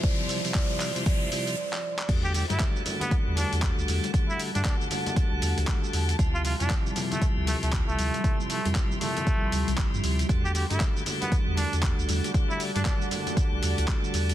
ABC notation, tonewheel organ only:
X:1
M:4/4
L:1/16
Q:"Swing 16ths" 1/4=117
K:Em
V:1 name="Tonewheel organ" clef=bass
[C,=F,G,E]3 [C,F,G,E] [C,F,G,E]3 [C,F,G,E] [C,F,G,E]2 [C,F,G,E]2 z4 | [D,G,A,F]3 [D,G,A,F]3 [D,G,A,F]8- [D,G,A,F]2 | [D,G,A,F]3 [D,G,A,F]3 [D,G,A,F]8- [D,G,A,F]2 | [C,=F,G,E]3 [C,F,G,E]3 [C,F,G,E]8- [C,F,G,E]2 |
[C,=F,G,E]3 [C,F,G,E]3 [C,F,G,E]8- [C,F,G,E]2 | [D,G,A,F]3 [D,G,A,F]3 [D,G,A,F]8- [D,G,A,F]2 | [D,G,A,F]3 [D,G,A,F]3 [D,G,A,F]8- [D,G,A,F]2 |]